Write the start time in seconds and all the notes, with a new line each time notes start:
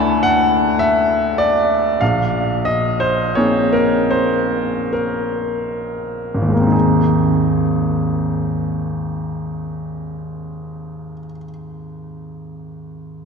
Already playing: D2 A3 D4 E4 A4 F#5 G#5 A5 B5
0.23 F#5
0.79 E5
1.38 D5
2.01 A#1 F5
2.65 D#5
3.00 C5
3.35 A#3 C4 D#4 G#4 C#5
3.73 A#4
4.11 C5
4.93 A#4
6.34 G#1
6.42 D#2
6.48 G#3
6.54 A#3
6.60 C4
6.67 D#4
6.72 G#4